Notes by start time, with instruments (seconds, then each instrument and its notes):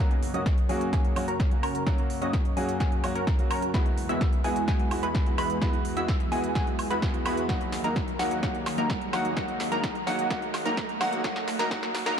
0.00 analog synth pad F#2 C#3 A#3 F#4 C#5, grand piano F#3 A#3 C#4 F#4, supersaw synth C#4 F#4 A#4, digital synth lead A#5, riser
0.11 closed hi-hat
0.23 open hi-hat
0.34 grand piano F#3 A#3 C#4 F#4, supersaw synth C#4 F#4 D#5, digital synth lead D#6, closed hi-hat
0.46 kick, snare, closed hi-hat
0.58 closed hi-hat
0.69 grand piano F#3 A#3 C#4 F#4, supersaw synth C#4 F#4 G#4, digital synth lead G#5, open hi-hat
0.81 closed hi-hat
0.93 supersaw synth C#4 F#4 G#4, digital synth lead G#5, kick, snare, closed hi-hat
1.05 closed hi-hat
1.16 grand piano F#3 A#3 C#4 F#4, open hi-hat, high woodblock
1.28 supersaw synth C#4 F#4 A#4, digital synth lead A#5, closed hi-hat
1.40 kick, snare, closed hi-hat
1.51 grand piano F#3 A#3 C#4 F#4, closed hi-hat
1.63 supersaw synth C#4 F#4 A#4, digital synth lead A#5, open hi-hat, high woodblock
1.75 closed hi-hat
1.86 grand piano F#3 A#3 C#4 F#4, supersaw synth C#4 F#4 A#4, digital synth lead A#5, kick, snare, closed hi-hat
1.98 closed hi-hat
2.10 open hi-hat
2.21 grand piano F#3 A#3 C#4 F#4, supersaw synth C#4 F#4 D#5, digital synth lead D#6, closed hi-hat
2.33 kick, snare, closed hi-hat
2.45 closed hi-hat
2.56 grand piano F#3 A#3 C#4 F#4, supersaw synth C#4 F#4 G#4, digital synth lead G#5, open hi-hat
2.69 closed hi-hat
2.80 supersaw synth C#4 F#4 G#4, digital synth lead G#5, kick, snare, closed hi-hat
2.92 closed hi-hat
3.03 grand piano F#3 A#3 C#4 F#4, open hi-hat, high woodblock
3.15 supersaw synth C#4 F#4 A#4, digital synth lead A#5, closed hi-hat
3.27 kick, snare, closed hi-hat
3.38 grand piano F#3 A#3 C#4 F#4, closed hi-hat
3.51 supersaw synth C#4 F#4 A#4, digital synth lead A#5, open hi-hat, high woodblock
3.62 closed hi-hat
3.73 analog synth pad E2 E3 G#3 B4, grand piano G#3 B3 E4 F#4, supersaw synth G#3 B3 E4 F#4 B4, digital synth lead B5, kick, snare, closed hi-hat
3.86 closed hi-hat
3.98 open hi-hat
4.09 grand piano G#3 B3 E4 F#4, supersaw synth G#3 B3 E4 F#4 E5, digital synth lead E6, closed hi-hat
4.21 kick, snare, closed hi-hat
4.33 closed hi-hat
4.44 grand piano G#3 B3 E4 F#4, supersaw synth G#3 B3 E4 F#4 G#4, digital synth lead G#5, open hi-hat
4.56 closed hi-hat
4.68 supersaw synth G#3 B3 E4 F#4 G#4, digital synth lead G#5, kick, snare, closed hi-hat
4.80 closed hi-hat
4.91 grand piano G#3 B3 E4 F#4, open hi-hat, high woodblock
5.03 supersaw synth G#3 B3 E4 F#4 B4, digital synth lead B5, closed hi-hat
5.15 kick, snare, closed hi-hat
5.26 grand piano G#3 B3 E4 F#4, closed hi-hat
5.38 supersaw synth G#3 B3 E4 F#4 B4, digital synth lead B5, open hi-hat, high woodblock
5.50 closed hi-hat
5.61 grand piano G#3 B3 E4 F#4, supersaw synth G#3 B3 E4 F#4 B4, analog synth pad G#4, digital synth lead B5, kick, snare, closed hi-hat
5.73 closed hi-hat
5.85 open hi-hat
5.96 grand piano G#3 B3 E4 F#4, supersaw synth G#3 B3 E4 F#4 E5, digital synth lead E6, closed hi-hat
6.08 kick, snare, closed hi-hat
6.20 closed hi-hat
6.31 grand piano G#3 B3 E4 F#4, supersaw synth G#3 B3 E4 F#4 G#4, digital synth lead G#5, open hi-hat
6.44 closed hi-hat
6.55 supersaw synth G#3 B3 E4 F#4 G#4, digital synth lead G#5, kick, snare, closed hi-hat
6.67 closed hi-hat
6.79 open hi-hat, high woodblock
6.90 grand piano G#3 B3 E4 F#4, supersaw synth G#3 B3 E4 F#4 B4, digital synth lead B5, closed hi-hat
7.02 kick, snare, closed hi-hat
7.13 grand piano G#3 B3 E4 F#4, closed hi-hat
7.25 grand piano G#3 B3 E4 F#4, supersaw synth G#3 B3 E4 F#4 B4, digital synth lead B5, open hi-hat, high woodblock
7.37 closed hi-hat
7.48 analog synth pad D#2 D#3 A#3 F#4, grand piano F#3 A#3 D#4 F#4, supersaw synth A#3 D#4 F#4, digital synth lead F#5, kick, snare, closed hi-hat
7.61 closed hi-hat
7.72 snare, open hi-hat
7.84 grand piano F#3 A#3 D#4 F#4, supersaw synth A#3 D#4 A#4, digital synth lead A#5, closed hi-hat
7.96 kick, snare, closed hi-hat
8.08 closed hi-hat
8.19 grand piano F#3 A#3 D#4 F#4, supersaw synth A#3 D#4 F#4, digital synth lead F#5, snare, open hi-hat
8.31 closed hi-hat
8.42 grand piano F#3 A#3 D#4 F#4, supersaw synth A#3 D#4 F#4, digital synth lead F#5, kick, snare, closed hi-hat
8.55 closed hi-hat
8.66 snare, open hi-hat, high woodblock
8.77 grand piano F#3 A#3 D#4 F#4, supersaw synth A#3 D#4 A#4, digital synth lead A#5, closed hi-hat
8.90 kick, snare, closed hi-hat
9.01 closed hi-hat
9.13 grand piano F#3 A#3 D#4 F#4, supersaw synth A#3 D#4 F#4, digital synth lead F#5, snare, open hi-hat, high woodblock
9.25 closed hi-hat
9.36 grand piano F#3 A#3 D#4 F#4, supersaw synth A#3 D#4 F#4, digital synth lead F#5, kick, snare, closed hi-hat
9.48 closed hi-hat
9.60 snare, open hi-hat
9.71 grand piano F#3 A#3 D#4 F#4, supersaw synth A#3 D#4 A#4, digital synth lead A#5, closed hi-hat
9.84 kick, snare, closed hi-hat
9.95 closed hi-hat
10.06 grand piano F#3 A#3 D#4 F#4, supersaw synth A#3 D#4 F#4, digital synth lead F#5, snare, open hi-hat
10.19 closed hi-hat
10.30 grand piano F#3 A#3 D#4 F#4, supersaw synth A#3 D#4 F#4, digital synth lead F#5, kick, snare, closed hi-hat
10.42 closed hi-hat
10.54 snare, open hi-hat, high woodblock
10.65 grand piano F#3 A#3 D#4 F#4, supersaw synth A#3 D#4 A#4, digital synth lead A#5, closed hi-hat
10.77 kick, snare, closed hi-hat
10.89 closed hi-hat
11.00 grand piano F#3 A#3 D#4 F#4, supersaw synth A#3 D#4 F#4, digital synth lead F#5, snare, open hi-hat, high woodblock
11.13 closed hi-hat
11.24 grand piano F#3 A#3 D#4 F#4, supersaw synth A#3 D#4 F#4, analog synth pad F#5, digital synth lead F#5, kick, snare, closed hi-hat
11.36 snare, closed hi-hat
11.48 snare, open hi-hat
11.59 grand piano F#3 A#3 D#4 F#4, supersaw synth A#3 D#4 A#4, digital synth lead A#5, snare, closed hi-hat
11.70 grand piano F#3 A#3 D#4 F#4, supersaw synth A#3 D#4 F#4, digital synth lead F#5, kick, snare, closed hi-hat
11.83 snare, closed hi-hat
11.95 snare, open hi-hat
12.06 grand piano F#3 A#3 D#4 F#4, supersaw synth A#3 D#4 A#4, digital synth lead A#5, snare, closed hi-hat